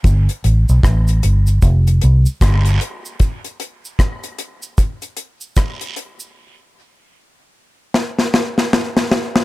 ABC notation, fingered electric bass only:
X:1
M:4/4
L:1/16
Q:"Swing 16ths" 1/4=76
K:Flyd
V:1 name="Fingered electric bass" clef=bass
G,,, z A,,, B,,, A,,,2 G,,,2 F,,,2 C,, z G,,,2 z2 | z16 | z16 |]